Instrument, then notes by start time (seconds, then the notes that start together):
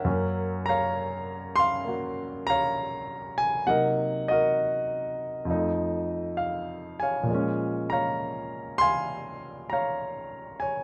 grand piano
Already playing: A#4 C#5 F#5
0.05 F#2 F#3 A#3 C#4
0.66 C#5 F5 A#5
1.55 F5 C6
1.85 A#3 F#4
2.47 C#5 F5 A#5
3.38 G#5
3.67 C3 F#3 A#3 D#4 A#4 D#5 F#5
4.28 F#4 A#4 D#5
5.45 F2 F3 A3
5.50 D#4
6.37 F5
7.00 C#5 F5 G#5
7.23 A#2 F3
7.31 G#3 C#4
7.90 C#5 F5 A#5
8.78 F5 G#5 C6
9.70 C#5 F5 A#5
10.60 C#5 G#5